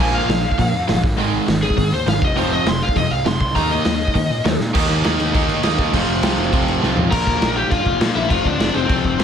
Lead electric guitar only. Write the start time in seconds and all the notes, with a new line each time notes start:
0.00 G#5
0.14 F5
1.63 G#4
1.93 C5
2.08 F5
2.24 D#5
2.38 C5
2.53 D#5
2.69 C6
2.83 F5
2.97 D#5
3.11 F5
3.27 C6
3.41 C6
3.55 A#5
3.72 D#5
7.11 A#4 A#5
7.56 G4 G5
7.70 F4 F5
8.15 E4 E5
8.30 F4 F5
8.46 D4 D5
8.74 C4 C5